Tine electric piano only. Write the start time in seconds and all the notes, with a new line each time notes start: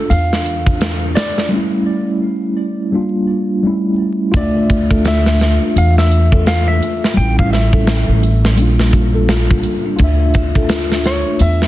Already playing: D4 F4
1.49 G3 A3
1.54 C#4 E4
2.92 G3 A#3 D4 F4
3.63 G3 A3 C#4 E4
4.31 A3 F4
4.36 D4 E5
7.14 G3 A3
7.19 C#4 E4
8.55 G3 A#3
8.60 D4 F4
9.96 A3 F4
10.01 D4 E5